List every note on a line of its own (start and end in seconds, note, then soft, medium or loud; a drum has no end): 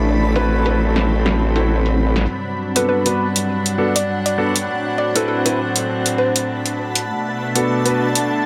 0.00 2.26 A1 medium
0.00 2.26 F#3 medium
0.00 2.24 A3 medium
0.00 2.26 C4 medium
0.00 2.28 C4 medium
0.00 0.85 D4 medium
0.00 0.85 A5 medium
0.00 4.68 B5 medium
0.36 0.62 C4 medium
0.36 0.62 E4 medium
0.36 0.62 F#4 medium
0.36 0.62 B4 loud
0.36 closed hi-hat medium
0.66 0.77 C4 medium
0.66 0.77 E4 medium
0.66 0.77 F#4 medium
0.66 0.77 B4 medium
0.66 closed hi-hat medium
0.96 snare soft
0.96 closed hi-hat medium
1.26 snare soft
1.26 closed hi-hat soft
1.56 1.75 C4 medium
1.56 1.76 E4 medium
1.56 1.75 F#4 medium
1.56 1.76 A4 medium
1.56 closed hi-hat medium
1.86 closed hi-hat soft
2.16 snare soft
2.16 closed hi-hat medium
2.28 4.66 G2 medium
2.28 7.04 F#3 medium
2.28 7.04 D4 medium
2.28 8.05 F#5 medium
2.75 3.01 B3 medium
2.75 3.01 D4 medium
2.75 3.01 F#4 medium
2.75 3.01 A4 medium
2.75 2.84 B4 medium
2.75 closed hi-hat medium
2.89 3.00 B4 medium
3.06 3.26 B3 medium
3.06 3.26 D4 medium
3.06 3.26 F#4 medium
3.06 3.26 B4 medium
3.06 closed hi-hat medium
3.36 closed hi-hat medium
3.66 closed hi-hat medium
3.78 3.94 B3 medium
3.78 3.94 D4 medium
3.78 3.94 F#4 medium
3.78 3.94 A4 medium
3.96 4.22 D5 medium
3.96 closed hi-hat medium
4.26 4.51 D5 medium
4.26 closed hi-hat soft
4.38 4.54 B3 medium
4.38 4.54 D4 medium
4.38 4.54 F#4 medium
4.38 4.54 A4 loud
4.56 closed hi-hat medium
4.68 7.06 A2 medium
4.68 7.06 C4 medium
4.98 5.12 D5 medium
5.04 8.46 A5 medium
5.15 5.41 C4 medium
5.15 5.41 E4 medium
5.15 5.41 F#4 medium
5.15 5.24 A4 medium
5.15 5.41 B4 medium
5.15 closed hi-hat medium
5.28 5.39 A4 medium
5.45 5.57 C4 medium
5.45 5.57 E4 medium
5.45 5.57 F#4 medium
5.45 5.57 B4 medium
5.45 closed hi-hat medium
5.66 8.05 B5 medium
5.76 closed hi-hat medium
6.06 closed hi-hat medium
6.18 6.66 C5 medium
6.36 closed hi-hat medium
6.66 closed hi-hat soft
6.95 closed hi-hat medium
7.08 8.46 B2 medium
7.08 8.46 A3 medium
7.08 8.46 D4 medium
7.55 7.81 B3 medium
7.55 7.81 D4 medium
7.55 7.81 F#4 medium
7.55 7.81 A4 medium
7.55 closed hi-hat medium
7.85 8.05 B3 medium
7.85 8.05 D4 medium
7.85 8.05 F#4 medium
7.85 8.05 B4 medium
7.85 closed hi-hat medium
8.15 closed hi-hat medium